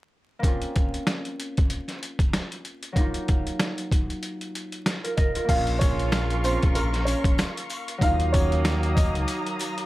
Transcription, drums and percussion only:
0.43 kick loud
0.43 closed hi-hat medium
0.62 closed hi-hat medium
0.76 kick medium
0.76 closed hi-hat medium
0.94 closed hi-hat soft
1.07 snare loud
1.07 snare medium
1.07 closed hi-hat medium
1.25 closed hi-hat medium
1.40 closed hi-hat medium
1.57 kick medium
1.57 closed hi-hat soft
1.70 closed hi-hat medium
1.88 snare soft
1.88 closed hi-hat medium
2.03 closed hi-hat medium
2.19 kick medium
2.19 closed hi-hat medium
2.33 snare loud
2.33 snare medium
2.33 closed hi-hat medium
2.52 closed hi-hat medium
2.65 closed hi-hat medium
2.83 closed hi-hat medium
2.96 kick loud
2.96 closed hi-hat medium
3.14 closed hi-hat medium
3.28 kick medium
3.28 closed hi-hat medium
3.47 closed hi-hat soft
3.59 snare loud
3.59 snare medium
3.59 closed hi-hat medium
3.78 closed hi-hat medium
3.91 kick medium
3.91 closed hi-hat medium
4.10 closed hi-hat soft
4.23 closed hi-hat medium
4.41 closed hi-hat medium
4.55 closed hi-hat medium
4.72 closed hi-hat medium
4.86 snare loud
4.86 snare medium
4.86 closed hi-hat loud
5.05 closed hi-hat medium
5.18 kick medium
5.18 closed hi-hat medium
5.35 closed hi-hat medium
5.49 kick loud
5.49 closed hi-hat loud
5.49 crash loud
5.49 sleigh bells medium
5.67 closed hi-hat medium
5.81 kick loud
5.81 closed hi-hat medium
5.81 sleigh bells medium
5.99 closed hi-hat soft
6.12 snare loud
6.12 closed hi-hat loud
6.12 sleigh bells medium
6.30 closed hi-hat medium
6.44 closed hi-hat medium
6.44 sleigh bells medium
6.63 kick loud
6.63 closed hi-hat soft
6.75 closed hi-hat medium
6.75 sleigh bells medium
6.93 snare soft
6.93 closed hi-hat medium
7.07 closed hi-hat medium
7.07 sleigh bells medium
7.24 kick medium
7.24 closed hi-hat medium
7.38 snare loud
7.38 snare medium
7.38 closed hi-hat loud
7.38 sleigh bells soft
7.57 closed hi-hat medium
7.70 closed hi-hat medium
7.70 sleigh bells medium
7.88 closed hi-hat medium
8.01 kick loud
8.01 closed hi-hat medium
8.01 sleigh bells medium
8.20 closed hi-hat medium
8.34 kick loud
8.34 closed hi-hat medium
8.34 sleigh bells medium
8.52 closed hi-hat soft
8.65 snare loud
8.65 closed hi-hat loud
8.65 sleigh bells medium
8.83 closed hi-hat medium
8.97 kick medium
8.97 closed hi-hat medium
8.97 sleigh bells medium
9.15 closed hi-hat soft
9.28 closed hi-hat medium
9.28 sleigh bells soft
9.46 closed hi-hat medium
9.59 closed hi-hat medium
9.59 sleigh bells medium
9.78 closed hi-hat medium

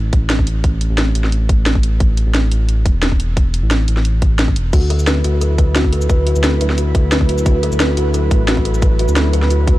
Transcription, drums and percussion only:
0.13 kick loud
0.13 closed hi-hat medium
0.30 snare loud
0.30 closed hi-hat medium
0.39 kick medium
0.47 closed hi-hat medium
0.64 kick loud
0.64 closed hi-hat medium
0.81 closed hi-hat medium
0.98 snare loud
0.98 closed hi-hat medium
1.15 closed hi-hat medium
1.24 snare soft
1.32 closed hi-hat medium
1.49 kick loud
1.49 closed hi-hat medium
1.66 snare loud
1.66 closed hi-hat medium
1.75 kick medium
1.83 closed hi-hat medium
2.00 kick loud
2.00 closed hi-hat medium
2.17 closed hi-hat medium
2.35 snare loud
2.35 closed hi-hat medium
2.52 closed hi-hat medium
2.69 closed hi-hat medium
2.86 kick loud
2.86 closed hi-hat medium
3.03 snare loud
3.03 closed hi-hat medium
3.12 kick medium
3.20 closed hi-hat medium
3.37 kick loud
3.37 closed hi-hat medium
3.54 closed hi-hat loud
3.71 snare loud
3.71 closed hi-hat medium
3.88 closed hi-hat loud
3.97 snare soft
4.05 closed hi-hat medium
4.22 kick loud
4.22 closed hi-hat loud
4.39 snare loud
4.39 closed hi-hat medium
4.48 kick medium
4.56 closed hi-hat loud
4.73 kick loud
4.73 closed hi-hat medium
4.73 crash medium
4.73 cabasa soft
4.90 closed hi-hat loud
4.99 cabasa medium
5.07 snare loud
5.07 closed hi-hat medium
5.07 cabasa soft
5.24 closed hi-hat loud
5.24 cabasa soft
5.41 closed hi-hat medium
5.41 cabasa medium
5.58 kick loud
5.58 closed hi-hat medium
5.58 cabasa soft
5.76 snare loud
5.76 closed hi-hat medium
5.76 cabasa soft
5.84 kick medium
5.93 closed hi-hat loud
6.02 cabasa medium
6.10 kick loud
6.10 closed hi-hat medium
6.10 cabasa soft
6.27 closed hi-hat loud
6.36 cabasa medium
6.44 snare loud
6.44 closed hi-hat medium
6.44 cabasa soft
6.61 closed hi-hat medium
6.61 cabasa soft
6.70 snare soft
6.78 closed hi-hat medium
6.78 cabasa soft
6.95 kick loud
6.95 closed hi-hat medium
6.95 cabasa soft
7.12 snare loud
7.12 closed hi-hat medium
7.12 cabasa soft
7.21 kick medium
7.29 closed hi-hat medium
7.38 cabasa medium
7.46 kick loud
7.46 closed hi-hat medium
7.46 cabasa soft
7.63 closed hi-hat medium
7.72 cabasa medium
7.80 snare loud
7.80 closed hi-hat medium
7.80 cabasa soft
7.97 closed hi-hat medium
7.97 cabasa soft
8.14 closed hi-hat medium
8.14 cabasa soft
8.31 kick loud
8.31 closed hi-hat medium
8.31 cabasa soft
8.48 snare loud
8.48 closed hi-hat medium
8.48 cabasa soft
8.57 kick medium
8.65 closed hi-hat medium
8.74 cabasa medium
8.82 kick loud
8.82 closed hi-hat medium
8.82 cabasa soft
8.99 closed hi-hat medium
9.08 cabasa medium
9.16 snare loud
9.16 closed hi-hat medium
9.16 cabasa soft
9.33 closed hi-hat medium
9.33 cabasa soft
9.42 snare soft
9.51 closed hi-hat medium
9.51 cabasa soft
9.67 kick loud
9.67 closed hi-hat medium
9.67 cabasa soft

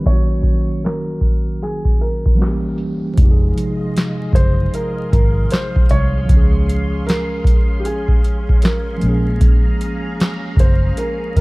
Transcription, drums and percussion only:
0.06 kick loud
0.06 closed hi-hat medium
0.43 kick medium
0.43 closed hi-hat medium
0.85 snare loud
0.85 closed hi-hat medium
1.21 kick medium
1.21 closed hi-hat medium
1.62 snare soft
1.62 closed hi-hat medium
1.85 kick medium
2.02 closed hi-hat medium
2.26 kick medium
2.39 snare medium
2.39 closed hi-hat medium
2.78 closed hi-hat soft
3.17 kick loud
3.17 closed hi-hat medium
3.58 closed hi-hat medium
3.97 snare loud
3.97 closed hi-hat medium
4.33 kick medium
4.33 closed hi-hat medium
4.74 closed hi-hat medium
5.13 kick medium
5.13 closed hi-hat medium
5.50 snare loud
5.50 closed hi-hat medium
5.76 kick medium
5.89 closed hi-hat medium
6.29 kick loud
6.29 closed hi-hat medium
6.69 closed hi-hat medium
7.09 snare loud
7.09 closed hi-hat medium
7.45 kick medium
7.45 closed hi-hat medium
7.85 closed hi-hat medium
8.08 kick medium
8.24 closed hi-hat medium
8.49 kick medium
8.62 snare loud
8.62 closed hi-hat medium
9.01 closed hi-hat medium
9.41 kick loud
9.41 closed hi-hat medium
9.81 closed hi-hat medium
10.20 snare loud
10.20 closed hi-hat medium
10.57 kick medium
10.57 closed hi-hat medium
10.97 closed hi-hat medium
11.36 kick medium
11.36 closed hi-hat medium

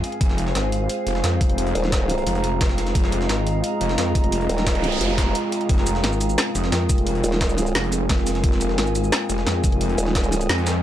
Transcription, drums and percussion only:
0.04 closed hi-hat medium
0.12 closed hi-hat soft
0.21 kick loud
0.21 closed hi-hat medium
0.29 snare soft
0.38 closed hi-hat medium
0.47 snare soft
0.55 snare loud
0.55 closed hi-hat medium
0.72 closed hi-hat medium
0.89 closed hi-hat medium
1.07 closed hi-hat medium
1.15 snare soft
1.24 snare loud
1.24 closed hi-hat medium
1.41 kick loud
1.41 closed hi-hat medium
1.50 closed hi-hat soft
1.58 closed hi-hat medium
1.67 closed hi-hat soft
1.75 closed hi-hat medium
1.84 snare medium
1.92 kick medium
1.92 snare loud
1.92 closed hi-hat medium
2.09 closed hi-hat medium
2.18 closed hi-hat soft
2.27 closed hi-hat medium
2.35 closed hi-hat soft
2.44 closed hi-hat medium
2.61 kick loud
2.61 snare loud
2.61 closed hi-hat medium
2.61 closed hi-hat loud
2.69 snare soft
2.78 snare soft
2.78 closed hi-hat medium
2.87 snare soft
2.87 closed hi-hat soft
2.95 kick loud
2.95 closed hi-hat medium
3.04 snare soft
3.12 closed hi-hat medium
3.21 snare soft
3.29 snare loud
3.29 closed hi-hat medium
3.47 closed hi-hat medium
3.64 closed hi-hat medium
3.81 closed hi-hat medium
3.89 snare medium
3.98 snare loud
3.98 closed hi-hat medium
4.15 kick loud
4.15 closed hi-hat medium
4.24 closed hi-hat soft
4.32 closed hi-hat medium
4.41 closed hi-hat soft
4.49 closed hi-hat medium
4.58 snare medium
4.58 closed hi-hat soft
4.67 kick medium
4.67 snare loud
4.67 closed hi-hat medium
4.67 closed hi-hat loud
4.75 closed hi-hat soft
4.84 closed hi-hat medium
4.92 closed hi-hat soft
5.01 closed hi-hat loud
5.01 closed hi-hat medium
5.09 closed hi-hat soft
5.18 kick medium
5.18 snare loud
5.18 closed hi-hat medium
5.35 closed hi-hat medium
5.35 closed hi-hat loud
5.52 closed hi-hat medium
5.61 closed hi-hat soft
5.69 kick loud
5.69 closed hi-hat medium
5.78 snare soft
5.87 closed hi-hat medium
5.87 shaker medium
5.95 snare soft
6.04 snare loud
6.04 snare soft
6.04 closed hi-hat medium
6.12 shaker soft
6.21 closed hi-hat medium
6.21 shaker medium
6.29 shaker soft
6.38 snare loud
6.38 closed hi-hat medium
6.55 closed hi-hat medium
6.55 shaker medium
6.64 snare medium
6.72 snare loud
6.72 snare soft
6.72 closed hi-hat medium
6.72 closed hi-hat loud
6.89 kick loud
6.89 closed hi-hat medium
6.89 shaker medium
6.98 closed hi-hat soft
7.07 closed hi-hat medium
7.15 closed hi-hat soft
7.24 closed hi-hat medium
7.24 shaker medium
7.32 snare medium
7.41 kick medium
7.41 snare loud
7.41 closed hi-hat medium
7.49 shaker soft
7.58 closed hi-hat medium
7.58 shaker medium
7.67 closed hi-hat soft
7.67 shaker soft
7.75 snare loud
7.75 closed hi-hat medium
7.84 closed hi-hat soft
7.92 closed hi-hat medium
7.92 shaker medium
8.09 kick loud
8.09 snare loud
8.09 snare medium
8.09 closed hi-hat medium
8.18 snare soft
8.27 snare soft
8.27 closed hi-hat medium
8.27 shaker medium
8.35 snare soft
8.35 closed hi-hat soft
8.44 kick loud
8.44 closed hi-hat medium
8.52 snare soft
8.61 closed hi-hat medium
8.61 shaker medium
8.69 snare soft
8.78 snare loud
8.78 snare soft
8.78 closed hi-hat medium
8.87 shaker soft
8.95 closed hi-hat medium
8.95 shaker medium
9.04 shaker soft
9.12 snare loud
9.12 closed hi-hat medium
9.29 closed hi-hat medium
9.29 shaker medium
9.38 snare soft
9.47 snare loud
9.47 snare soft
9.47 closed hi-hat medium
9.64 kick loud
9.64 closed hi-hat medium
9.64 shaker medium
9.72 closed hi-hat soft
9.81 closed hi-hat medium
9.89 closed hi-hat soft
9.98 closed hi-hat medium
9.98 shaker medium
10.07 snare medium
10.15 kick medium
10.15 snare loud
10.15 closed hi-hat medium
10.24 closed hi-hat soft
10.24 shaker soft
10.32 closed hi-hat medium
10.32 shaker medium
10.41 closed hi-hat soft
10.41 shaker soft
10.49 snare loud
10.49 closed hi-hat medium
10.58 closed hi-hat soft
10.67 snare loud
10.67 closed hi-hat medium
10.67 shaker medium

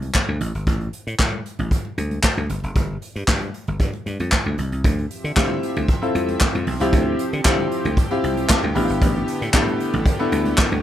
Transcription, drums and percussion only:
0.02 closed hi-hat medium
0.02 high conga medium
0.14 kick medium
0.14 snare loud
0.14 clap medium
0.14 muted conga soft
0.28 high conga medium
0.41 closed hi-hat medium
0.41 low conga medium
0.54 closed hi-hat soft
0.67 kick loud
0.67 closed hi-hat medium
0.67 muted conga soft
0.67 low conga medium
0.80 closed hi-hat soft
0.93 closed hi-hat medium
1.07 closed hi-hat medium
1.19 kick loud
1.19 snare loud
1.19 clap medium
1.19 muted conga soft
1.32 muted conga soft
1.32 high conga medium
1.46 closed hi-hat medium
1.59 closed hi-hat soft
1.59 high conga soft
1.59 low conga medium
1.71 kick loud
1.71 closed hi-hat medium
1.71 muted conga soft
1.85 muted conga soft
1.98 closed hi-hat medium
1.98 high conga medium
2.11 closed hi-hat medium
2.11 high conga medium
2.23 kick loud
2.23 snare loud
2.23 clap medium
2.23 muted conga soft
2.37 closed hi-hat soft
2.37 muted conga soft
2.37 high conga medium
2.50 closed hi-hat medium
2.50 low conga medium
2.63 closed hi-hat soft
2.75 kick loud
2.75 closed hi-hat medium
2.75 muted conga soft
2.75 low conga medium
3.02 closed hi-hat medium
3.16 closed hi-hat medium
3.28 kick loud
3.28 snare loud
3.28 clap medium
3.41 closed hi-hat soft
3.41 muted conga soft
3.41 high conga medium
3.54 closed hi-hat medium
3.67 closed hi-hat soft
3.67 high conga medium
3.67 low conga medium
3.80 kick loud
3.80 closed hi-hat medium
3.80 muted conga soft
3.94 closed hi-hat soft
3.94 muted conga soft
4.06 closed hi-hat medium
4.06 high conga medium
4.19 closed hi-hat medium
4.19 high conga medium
4.32 kick medium
4.32 snare loud
4.32 clap medium
4.32 muted conga soft
4.46 muted conga soft
4.46 high conga medium
4.58 closed hi-hat medium
4.58 low conga medium
4.72 closed hi-hat soft
4.84 kick loud
4.84 closed hi-hat loud
4.84 muted conga soft
4.84 low conga medium
4.98 closed hi-hat soft
5.10 closed hi-hat medium
5.24 closed hi-hat medium
5.37 kick loud
5.37 snare loud
5.37 clap medium
5.50 muted conga soft
5.50 high conga medium
5.63 closed hi-hat medium
5.76 closed hi-hat soft
5.76 high conga medium
5.76 low conga medium
5.88 kick loud
5.88 closed hi-hat loud
5.88 muted conga soft
6.02 closed hi-hat soft
6.02 muted conga soft
6.15 closed hi-hat medium
6.15 high conga medium
6.28 closed hi-hat medium
6.28 high conga medium
6.40 kick loud
6.40 snare loud
6.40 clap medium
6.40 muted conga soft
6.55 closed hi-hat soft
6.55 muted conga soft
6.55 high conga medium
6.67 open hi-hat medium
6.67 low conga medium
6.80 closed hi-hat medium
6.93 kick loud
6.93 closed hi-hat medium
6.93 low conga medium
7.19 closed hi-hat medium
7.33 closed hi-hat medium
7.45 kick loud
7.45 snare loud
7.45 clap loud
7.45 muted conga soft
7.58 closed hi-hat soft
7.58 high conga medium
7.71 closed hi-hat medium
7.85 closed hi-hat medium
7.85 high conga medium
7.85 low conga medium
7.97 kick loud
7.97 closed hi-hat medium
7.97 muted conga soft
8.11 closed hi-hat soft
8.11 muted conga soft
8.24 closed hi-hat medium
8.24 high conga medium
8.37 closed hi-hat medium
8.37 high conga medium
8.50 kick loud
8.50 snare loud
8.50 clap loud
8.63 muted conga soft
8.63 high conga medium
8.76 open hi-hat medium
8.76 low conga medium
8.89 closed hi-hat medium
9.02 kick loud
9.02 closed hi-hat medium
9.02 muted conga soft
9.02 low conga medium
9.15 closed hi-hat soft
9.28 closed hi-hat medium
9.42 closed hi-hat medium
9.54 kick loud
9.54 snare loud
9.54 clap medium
9.67 closed hi-hat soft
9.67 muted conga soft
9.67 high conga medium
9.80 closed hi-hat medium
9.93 closed hi-hat medium
9.93 high conga soft
9.93 low conga medium
10.06 kick loud
10.06 closed hi-hat loud
10.06 muted conga soft
10.20 closed hi-hat soft
10.20 muted conga soft
10.32 closed hi-hat medium
10.32 high conga medium
10.45 closed hi-hat medium
10.45 high conga medium
10.58 kick loud
10.58 snare loud
10.58 clap loud
10.58 muted conga soft
10.72 closed hi-hat soft
10.72 muted conga soft
10.72 high conga medium

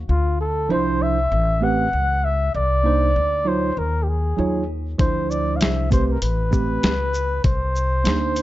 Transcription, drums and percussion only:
4.99 kick loud
4.99 closed hi-hat medium
5.31 shaker soft
5.61 snare loud
5.61 closed hi-hat medium
5.92 kick medium
5.92 closed hi-hat medium
5.92 shaker medium
6.22 closed hi-hat medium
6.53 kick medium
6.53 shaker medium
6.83 snare loud
6.83 closed hi-hat medium
7.14 shaker medium
7.44 kick loud
7.44 closed hi-hat medium
7.76 shaker soft
8.05 snare loud
8.05 closed hi-hat medium
8.36 closed hi-hat medium
8.36 shaker medium

